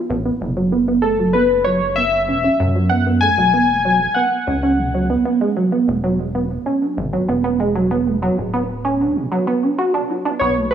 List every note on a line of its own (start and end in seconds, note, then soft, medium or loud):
0.10 0.30 A1 loud
0.10 0.20 B3 medium
0.25 0.42 B3 medium
0.41 2.30 F#1 medium
0.41 0.51 B2 medium
0.57 0.71 F#3 medium
0.72 0.87 B3 medium
0.88 1.03 B3 loud
1.02 1.18 A3 medium
1.02 1.35 A4 medium
1.19 1.34 F#3 medium
1.33 1.52 B3 medium
1.33 1.66 B4 medium
1.50 1.61 A3 medium
1.64 1.81 F#3 loud
1.64 1.97 C#5 loud
1.96 2.07 B3 medium
1.96 2.55 E5 loud
2.28 2.49 E1 medium
2.28 2.39 C#4 medium
2.44 2.61 C#4 loud
2.60 3.29 F#2 medium
2.60 2.70 B2 medium
2.75 2.90 F#3 medium
2.89 3.06 B3 medium
2.89 3.03 F#5 loud
3.07 3.21 B3 loud
3.21 3.37 A3 medium
3.21 4.18 G#5 loud
3.38 4.07 E1 medium
3.38 3.53 F#3 medium
3.53 3.71 B3 medium
3.69 3.79 A3 medium
3.85 4.00 F#3 loud
4.14 4.26 B3 medium
4.14 5.05 F#5 medium
4.47 5.17 C#2 medium
4.47 4.57 C#4 medium
4.63 4.80 C#4 loud
4.78 4.89 B2 medium
4.94 5.09 F#3 medium
5.10 5.25 B3 medium
5.25 5.40 B3 medium
5.41 5.56 G#3 medium
5.57 5.71 F#3 medium
5.72 5.89 B3 medium
5.88 6.57 E1 medium
5.88 5.98 G#3 medium
6.03 6.18 F#3 loud
6.35 6.45 B3 medium
6.66 6.83 C#4 medium
6.82 6.99 D4 loud
6.97 7.18 G#1 medium
6.97 7.07 B2 medium
7.13 7.28 F#3 medium
7.28 8.29 E1 loud
7.28 7.43 B3 medium
7.44 7.59 B3 loud
7.60 7.74 G#3 medium
7.75 7.90 F#3 medium
7.91 8.08 B3 medium
8.07 8.17 G#3 medium
8.22 8.37 F#3 loud
8.38 9.07 D1 medium
8.53 8.64 B3 medium
8.85 9.02 C#4 medium
9.00 9.17 D4 loud
9.16 9.26 B2 medium
9.32 9.46 F#3 medium
9.47 9.64 B3 medium
9.63 9.78 D4 medium
9.78 9.93 F#4 loud
9.94 10.11 D4 medium
10.10 10.24 F#4 medium
10.25 10.31 D4 loud
10.39 10.74 B1 loud
10.39 10.58 B3 medium
10.39 10.53 C#5 medium
10.57 10.67 A3 medium
10.71 10.74 B4 loud